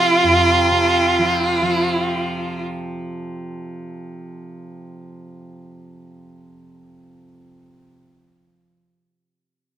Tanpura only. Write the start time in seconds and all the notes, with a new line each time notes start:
Already playing: F2 C3 F3
0.24 F2
0.71 C3
1.19 F3
1.62 F3